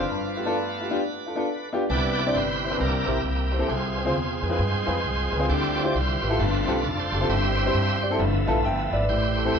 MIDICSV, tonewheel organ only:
0, 0, Header, 1, 2, 480
1, 0, Start_track
1, 0, Key_signature, 0, "major"
1, 0, Tempo, 449438
1, 106, Time_signature, 4, 2, 24, 8
1, 10243, End_track
2, 0, Start_track
2, 0, Title_t, "Tonewheel organ"
2, 0, Program_c, 0, 16
2, 0, Note_on_c, 0, 62, 65
2, 0, Note_on_c, 0, 65, 62
2, 0, Note_on_c, 0, 71, 84
2, 400, Note_on_c, 0, 57, 55
2, 405, Note_off_c, 0, 65, 0
2, 412, Note_on_c, 0, 59, 45
2, 418, Note_on_c, 0, 65, 58
2, 1030, Note_off_c, 0, 57, 0
2, 1036, Note_off_c, 0, 59, 0
2, 1039, Note_off_c, 0, 65, 0
2, 1807, Note_off_c, 0, 62, 0
2, 1808, Note_off_c, 0, 71, 0
2, 2018, Note_on_c, 0, 59, 56
2, 2027, Note_on_c, 0, 74, 111
2, 2028, Note_on_c, 0, 67, 76
2, 2030, Note_on_c, 0, 62, 54
2, 2033, Note_on_c, 0, 64, 64
2, 2041, Note_on_c, 0, 71, 72
2, 2378, Note_off_c, 0, 59, 0
2, 2385, Note_off_c, 0, 62, 0
2, 2386, Note_off_c, 0, 64, 0
2, 2517, Note_off_c, 0, 67, 0
2, 2520, Note_on_c, 0, 72, 98
2, 2523, Note_off_c, 0, 74, 0
2, 2524, Note_on_c, 0, 64, 75
2, 2530, Note_on_c, 0, 67, 72
2, 2953, Note_off_c, 0, 71, 0
2, 2964, Note_off_c, 0, 64, 0
2, 2967, Note_off_c, 0, 67, 0
2, 2992, Note_on_c, 0, 62, 48
2, 2994, Note_on_c, 0, 58, 52
2, 2999, Note_on_c, 0, 70, 91
2, 3002, Note_on_c, 0, 64, 70
2, 3002, Note_on_c, 0, 67, 67
2, 3009, Note_off_c, 0, 72, 0
2, 3346, Note_off_c, 0, 62, 0
2, 3347, Note_off_c, 0, 58, 0
2, 3441, Note_off_c, 0, 70, 0
2, 3456, Note_off_c, 0, 64, 0
2, 3466, Note_off_c, 0, 67, 0
2, 3469, Note_on_c, 0, 64, 62
2, 3473, Note_on_c, 0, 58, 58
2, 3479, Note_on_c, 0, 67, 77
2, 3916, Note_off_c, 0, 64, 0
2, 3918, Note_off_c, 0, 58, 0
2, 3945, Note_on_c, 0, 65, 64
2, 3946, Note_on_c, 0, 60, 67
2, 3953, Note_on_c, 0, 68, 87
2, 3968, Note_off_c, 0, 67, 0
2, 4432, Note_off_c, 0, 60, 0
2, 4434, Note_off_c, 0, 65, 0
2, 4444, Note_on_c, 0, 60, 61
2, 4446, Note_off_c, 0, 68, 0
2, 4447, Note_on_c, 0, 65, 63
2, 4460, Note_on_c, 0, 68, 80
2, 4731, Note_off_c, 0, 60, 0
2, 4741, Note_on_c, 0, 56, 61
2, 4743, Note_off_c, 0, 65, 0
2, 4744, Note_on_c, 0, 60, 53
2, 4756, Note_on_c, 0, 65, 59
2, 4910, Note_off_c, 0, 68, 0
2, 4913, Note_off_c, 0, 65, 0
2, 4923, Note_on_c, 0, 68, 59
2, 4926, Note_on_c, 0, 65, 60
2, 4937, Note_on_c, 0, 72, 86
2, 5663, Note_off_c, 0, 72, 0
2, 5831, Note_off_c, 0, 56, 0
2, 5832, Note_off_c, 0, 60, 0
2, 5833, Note_off_c, 0, 68, 0
2, 5834, Note_off_c, 0, 65, 0
2, 5860, Note_on_c, 0, 60, 54
2, 5861, Note_on_c, 0, 55, 59
2, 5869, Note_on_c, 0, 74, 96
2, 5871, Note_on_c, 0, 64, 58
2, 5876, Note_on_c, 0, 65, 70
2, 5883, Note_on_c, 0, 67, 74
2, 6219, Note_off_c, 0, 60, 0
2, 6220, Note_off_c, 0, 55, 0
2, 6225, Note_off_c, 0, 64, 0
2, 6231, Note_off_c, 0, 65, 0
2, 6289, Note_off_c, 0, 74, 0
2, 6302, Note_on_c, 0, 74, 66
2, 6353, Note_off_c, 0, 74, 0
2, 6361, Note_on_c, 0, 72, 91
2, 6367, Note_on_c, 0, 64, 65
2, 6373, Note_on_c, 0, 65, 67
2, 6793, Note_off_c, 0, 67, 0
2, 6805, Note_off_c, 0, 64, 0
2, 6808, Note_off_c, 0, 65, 0
2, 6827, Note_on_c, 0, 57, 54
2, 6837, Note_on_c, 0, 71, 89
2, 6838, Note_on_c, 0, 60, 54
2, 6838, Note_on_c, 0, 65, 61
2, 6841, Note_on_c, 0, 62, 66
2, 6849, Note_off_c, 0, 72, 0
2, 7182, Note_off_c, 0, 57, 0
2, 7188, Note_off_c, 0, 60, 0
2, 7310, Note_on_c, 0, 69, 85
2, 7327, Note_off_c, 0, 71, 0
2, 7449, Note_off_c, 0, 69, 0
2, 7455, Note_off_c, 0, 65, 0
2, 7461, Note_on_c, 0, 69, 74
2, 7467, Note_on_c, 0, 65, 71
2, 7474, Note_on_c, 0, 72, 100
2, 7752, Note_off_c, 0, 62, 0
2, 7766, Note_off_c, 0, 69, 0
2, 7769, Note_off_c, 0, 65, 0
2, 7772, Note_off_c, 0, 72, 0
2, 7778, Note_on_c, 0, 55, 60
2, 7791, Note_on_c, 0, 60, 55
2, 7793, Note_on_c, 0, 64, 64
2, 7796, Note_on_c, 0, 67, 73
2, 7796, Note_on_c, 0, 76, 104
2, 7803, Note_on_c, 0, 72, 77
2, 8526, Note_off_c, 0, 55, 0
2, 8531, Note_off_c, 0, 76, 0
2, 8532, Note_off_c, 0, 60, 0
2, 8533, Note_off_c, 0, 64, 0
2, 8708, Note_off_c, 0, 67, 0
2, 8712, Note_off_c, 0, 72, 0
2, 8744, Note_on_c, 0, 53, 58
2, 8749, Note_on_c, 0, 59, 54
2, 8756, Note_on_c, 0, 64, 61
2, 8757, Note_on_c, 0, 57, 55
2, 9661, Note_off_c, 0, 53, 0
2, 9663, Note_off_c, 0, 59, 0
2, 9667, Note_off_c, 0, 64, 0
2, 9668, Note_off_c, 0, 57, 0
2, 9707, Note_on_c, 0, 64, 71
2, 9707, Note_on_c, 0, 72, 100
2, 9709, Note_on_c, 0, 67, 69
2, 10179, Note_off_c, 0, 67, 0
2, 10183, Note_off_c, 0, 72, 0
2, 10189, Note_on_c, 0, 76, 103
2, 10192, Note_on_c, 0, 67, 81
2, 10196, Note_on_c, 0, 72, 72
2, 10243, Note_off_c, 0, 64, 0
2, 10243, Note_off_c, 0, 67, 0
2, 10243, Note_off_c, 0, 72, 0
2, 10243, Note_off_c, 0, 76, 0
2, 10243, End_track
0, 0, End_of_file